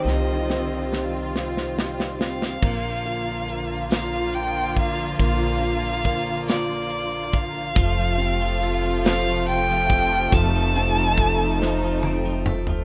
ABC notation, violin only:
X:1
M:6/8
L:1/8
Q:3/8=47
K:Bb
V:1 name="Violin"
e2 z3 f- | f3 f g f | f3 d2 f- | f3 f g2 |
a4 z2 |]